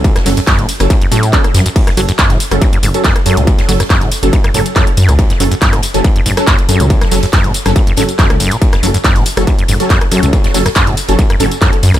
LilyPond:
<<
  \new Staff \with { instrumentName = "Synth stab" } { \time 4/4 \key fis \minor \tempo 4 = 140 <fis cis' a'>8 <fis cis' a'>16 r4 <fis cis' a'>16 r8 <fis cis' a'>16 r16 <fis cis' a'>16 r8. | r8 <fis cis' a'>16 r4 <fis cis' a'>16 r8. <fis cis' a'>16 r8 <fis cis' a'>8~ | <fis cis' a'>8 <fis cis' a'>16 r4 <fis cis' a'>16 r8 <fis cis' a'>16 r16 <fis cis' a'>16 r8. | r8 <fis cis' a'>16 r4 <fis cis' a'>16 r8. <fis cis' a'>16 r8 <fis cis' a'>8~ |
<fis cis' a'>8 <fis cis' a'>16 r4 <fis cis' a'>16 r8 <fis cis' a'>16 r16 <fis cis' a'>16 r8. | r8 <fis cis' a'>16 r4 <fis cis' a'>16 r8. <fis cis' a'>16 r8 <fis cis' a'>8~ | <fis cis' a'>8 <fis cis' a'>16 r4 <fis cis' a'>16 r8 <fis cis' a'>16 r16 <fis cis' a'>16 r8. | }
  \new Staff \with { instrumentName = "Acid bass" } { \clef bass \time 4/4 \key fis \minor r16 fis,16 fis16 fis,16 fis,16 a,16 r8 fis,16 fis,16 a,8 fis,16 r16 fis,16 fis,16 | r16 fis,16 fis16 fis,16 fis,16 a,16 r8 fis,16 fis,16 gis,16 r16 fis,16 r16 fis,16 b,16 | r16 fis,16 fis16 fis,16 fis,16 a,16 r8 fis,16 fis,16 gis,16 r16 fis,16 r16 fis,16 b,16 | r16 fis,16 fis16 fis,16 fis,16 a,16 r8 fis,16 fis,16 gis,16 r16 fis,16 r16 fis,16 b,16 |
r16 fis,16 fis16 fis,16 fis,16 a,16 r8 fis,16 fis,16 gis,16 r16 fis,16 r16 fis,16 b,16 | r16 fis,16 fis16 fis,16 fis,16 a,16 r8 fis,16 fis,16 gis,16 r16 fis,16 r16 fis,16 fis,16 | r16 fis,16 fis16 fis,16 fis,16 a,16 r8 fis,16 fis,16 gis,16 r16 fis,16 r16 fis,16 fis,16 | }
  \new Staff \with { instrumentName = "Detuned saw bass" } { \clef bass \time 4/4 \key fis \minor r8 fis,,16 r8 fis,,16 r16 fis,,16 r4. fis,16 r16 | r8 fis,,16 r8 fis,,16 r16 fis,,16 r8 fis,,16 r8. fis,16 cis,16 | r8 fis,,16 r8 fis,,16 r16 fis,,16 r8 fis,,16 r8. fis,16 cis,16 | r8 fis,,16 r8 fis,,16 r16 fis,,16 r8 fis,,16 r8. fis,16 cis,16 |
r8 fis,,16 r8 fis,,16 r16 fis,,16 r8 fis,,16 r8 cis,16 fis,,16 r16 | r8 fis,,16 r8 fis,,16 r16 fis,,16 r8 fis,,16 r8. fis,16 cis,16 | r8 fis,,16 r8 fis,,16 r16 fis,,16 r8 fis,,16 r8. fis,16 cis,16 | }
  \new DrumStaff \with { instrumentName = "Drums" } \drummode { \time 4/4 <hh bd cymr tamb>16 <hh cymr ss sn>16 <hho cymr tamb>16 <hh cymr tamb>16 <hc hh bd cymr sn tamb>16 <hh cymr>16 <hho cymr tamb>16 <hh cymr ss tamb>16 <hh bd cymr tamb>16 <hh cymr>16 <hho cymr tamb>16 <hh cymr tamb>16 <hc hh bd cymr tamb>16 <hh cymr ss>16 <hho cymr sn tamb>16 <hh cymr tamb>16 | <cymc hh bd cymr tamb>16 <hh cymr ss sn>16 <hho cymr tamb>16 <hh cymr tamb>16 <hc hh bd cymr sn tamb>16 <hh cymr sn>16 <hho cymr tamb>16 <hh cymr ss tamb>16 <hh bd cymr tamb>16 <hh cymr>16 <hho cymr tamb>16 <hh cymr tamb>16 <hc hh bd cymr sn tamb>16 <hh cymr ss>16 <hho cymr tamb>16 <hh cymr tamb>16 | <hh bd cymr tamb>16 <hh cymr sn>16 <hho cymr tamb>16 <hh cymr ss tamb>16 <hc hh bd cymr sn tamb>16 <hh cymr>16 <hho cymr tamb>16 <hh cymr tamb>16 <hh bd cymr tamb>16 <hh cymr ss>16 <hho cymr tamb>16 <hh cymr tamb>16 <hc hh bd cymr sn tamb>16 <hh cymr>16 <hho cymr tamb>16 <hh cymr ss tamb>16 | <hh bd cymr tamb>16 <hh cymr sn>16 <hho cymr tamb>16 <hh cymr tamb>16 <hc hh bd cymr sn tamb>16 <hh cymr ss sn>16 <hho cymr tamb>16 <hh cymr tamb>16 <hh bd cymr tamb>16 <hh cymr>16 <hho cymr tamb>16 <hh cymr ss tamb>16 <hc hh bd cymr sn tamb>16 <hh cymr>16 <hho cymr tamb>16 <hh cymr tamb>16 |
<hh bd cymr tamb>16 <hh cymr ss sn>16 <hho cymr tamb>16 <hh cymr tamb>16 <hc hh bd cymr sn tamb>16 <hh cymr>16 <hho cymr tamb>16 <hh cymr ss tamb>16 <hh bd cymr tamb>16 <hh cymr>16 <hho cymr tamb>16 <hh cymr tamb>16 <hc hh bd cymr sn tamb>16 <hh cymr ss>16 <hho cymr tamb>16 <hh cymr tamb>16 | <hh bd cymr tamb>16 <hh cymr ss sn>16 <hho cymr tamb>16 <hh cymr tamb>16 <hc hh bd cymr sn tamb>16 <hh cymr sn>16 <hho cymr tamb>16 <hh cymr ss tamb>16 <hh bd cymr tamb>16 <hh cymr>16 <hho cymr tamb>16 <hh cymr tamb>16 <hc hh bd cymr sn tamb>16 <hh cymr ss>16 <hho cymr tamb>16 <hh cymr tamb>16 | <hh bd cymr tamb>16 <hh cymr sn>16 <hho cymr tamb>16 <hh cymr ss tamb>16 <hc hh bd cymr sn tamb>16 <hh cymr>16 <hho cymr tamb>16 <hh cymr tamb>16 <hh bd cymr tamb>16 <hh cymr ss>16 <hho cymr tamb>16 <hh cymr tamb>16 <hc hh bd cymr sn tamb>16 <hh cymr>16 <hho cymr tamb>16 <hh cymr ss tamb>16 | }
>>